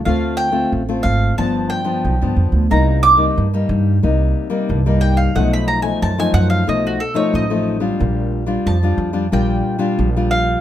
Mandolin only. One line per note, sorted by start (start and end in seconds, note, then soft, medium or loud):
0.05 0.37 F5 medium
0.37 0.70 G5 loud
1.03 1.36 F5 medium
1.38 1.69 A5 medium
1.70 2.66 G5 medium
2.71 3.02 A#5 medium
3.03 3.23 D6 loud
5.01 5.18 G5 medium
5.17 5.34 F5 medium
5.36 5.52 F#5 medium
5.53 5.67 B5 medium
5.68 5.82 A#5 medium
5.82 6.00 G#5 medium
6.02 6.18 A5 medium
6.20 6.33 G#5 loud
6.34 6.49 F#5 loud
6.50 6.67 F5 medium
6.69 6.84 D#5 medium
6.87 7.02 F#4 medium
7.00 7.16 A4 medium
7.16 7.33 C#5 medium
7.35 7.97 D#5 medium
8.67 9.29 A5 medium
9.33 10.28 G5 medium
10.31 10.61 F5 loud